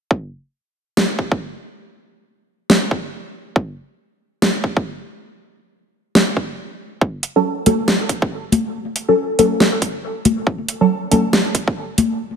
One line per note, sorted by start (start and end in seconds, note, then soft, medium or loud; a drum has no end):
0.11 kick loud
0.97 snare loud
1.19 kick medium
1.32 kick loud
2.70 snare loud
2.91 kick medium
3.56 kick loud
4.42 snare loud
4.64 kick medium
4.77 kick loud
6.15 snare loud
6.37 kick medium
7.01 kick loud
7.23 closed hi-hat medium
7.36 7.41 F#3 medium
7.36 7.40 C#4 medium
7.36 7.40 A4 loud
7.66 7.77 F#3 medium
7.66 7.77 C#4 medium
7.66 7.77 A4 loud
7.66 closed hi-hat medium
7.66 high conga medium
7.88 snare loud
8.09 kick medium
8.09 closed hi-hat medium
8.22 kick loud
8.52 closed hi-hat medium
8.52 high conga medium
8.96 closed hi-hat medium
9.08 9.13 F#3 medium
9.08 9.13 C#4 medium
9.08 9.13 A4 loud
9.39 9.50 F#3 medium
9.39 9.50 C#4 medium
9.39 9.50 A4 loud
9.39 closed hi-hat medium
9.39 high conga medium
9.60 snare loud
9.82 kick medium
9.82 closed hi-hat medium
10.25 closed hi-hat medium
10.25 high conga medium
10.47 kick loud
10.68 closed hi-hat medium
10.81 10.86 F#3 medium
10.81 10.86 C#4 medium
10.81 10.86 A4 loud
11.11 11.22 F#3 medium
11.11 11.22 C#4 medium
11.11 11.22 A4 loud
11.11 closed hi-hat medium
11.11 high conga medium
11.33 snare loud
11.55 kick medium
11.55 closed hi-hat medium
11.68 kick medium
11.98 closed hi-hat medium
11.98 high conga medium